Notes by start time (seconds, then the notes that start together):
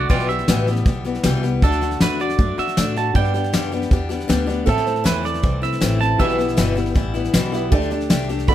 Already playing: A3 D4
0.09 B1 E2 B2 E3 G3 B3 F4 G4 D5, kick, snare
0.20 snare
0.28 E3 G3 B3 G4 E5, snare
0.39 snare
0.48 A1 E2 B2 E3 G3 B3 G4, snare, hi-hat pedal
0.67 E3 G3 B3 G4, snare
0.76 snare
0.86 B1 E3 G3 B3 G4, kick, snare
1.04 E3 G3 B3 G4, snare
1.15 snare
1.23 C2 E2 B2 E3 G3 B3 G4, snare, hi-hat pedal
1.43 E3 G3 B3 G4, snare
1.62 D2 D3 A3 D4 F#4 A4, kick, snare
1.72 snare
1.81 A3 D4 F#4, snare
1.91 snare
2.00 E2 D3 A3 D4 F#4 B4, snare, hi-hat pedal
2.20 A3 D4 F#4 D5, snare
2.30 snare
2.38 F#2 D3 A3 D4 F#4, kick, snare
2.58 A3 D4 F#4 E5, muted upright bass stroke, snare
2.68 snare
2.77 A2 D3 A3 D4 F#4, snare, hi-hat pedal
2.96 A3 D4 F#4 A5, snare
3.14 G2 D3 G3 B3 D4 G4 B4 D5 G5, kick, snare
3.25 snare
3.34 G3 B3 D4 G4, snare
3.44 snare
3.53 F#2 G2 D3 G3 B3 D4 G4, snare, hi-hat pedal
3.72 G3 B3 D4 G4, snare
3.82 snare
3.91 E2 G3 B3 D4 G4, kick, snare
4.09 G3 B3 D4 G4, snare
4.20 snare
4.28 D2 G2 D3 G3 B3 D4 G4, snare, hi-hat pedal
4.46 G3 B3 D4 G4, snare
4.66 A2 E3 A3 C4 E4 A4 C5 E5, kick, snare
4.77 snare
4.86 A3 C4 E4, snare
4.96 snare
5.04 E2 A2 E3 A3 C4 E4 B4, snare, hi-hat pedal
5.23 A3 C4 E4 D5, snare
5.34 snare
5.43 C2 E3 A3 C4 E4, kick, snare
5.62 A3 C4 E4 E5, snare
5.72 snare
5.80 A1 A2 E3 A3 C4 E4, snare, hi-hat pedal
6.00 A3 C4 E4 A5, snare
6.18 B1 E2 B2 E3 G3 B3 E4 G4 B4 E5, kick, snare
6.29 snare
6.38 E3 G3 B3 E4, snare
6.48 snare
6.57 G1 E2 B2 E3 G3 B3 E4, snare, hi-hat pedal
6.75 E3 G3 B3 E4, snare
6.86 snare
6.94 A1 E3 G3 B3 E4, kick, snare
7.14 E3 G3 B3 E4, snare
7.24 snare
7.34 B1 E2 B2 E3 G3 B3 E4, snare, hi-hat pedal
7.52 E3 G3 B3 E4 G4 B4 E5, snare
7.71 D2 D3 A3 D4 G4 A4 D5, kick, snare
7.81 snare
7.90 A3 D4 G4, snare
8.01 snare
8.10 C2 D3 A3 D4 G4, snare, hi-hat pedal
8.29 A3 D4 G4, snare
8.39 snare
8.47 D2 D3 A3 D4 F#4 A4 D5 B5, kick, snare